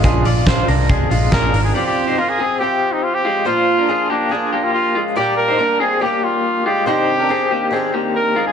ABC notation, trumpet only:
X:1
M:4/4
L:1/16
Q:1/4=141
K:Fdor
V:1 name="Trumpet"
z12 B3 A | G G3 F A3 G3 E F G3 | F6 D4- D F F3 z | G2 B4 A2 G2 F4 G2 |
G8- G z3 B3 A |]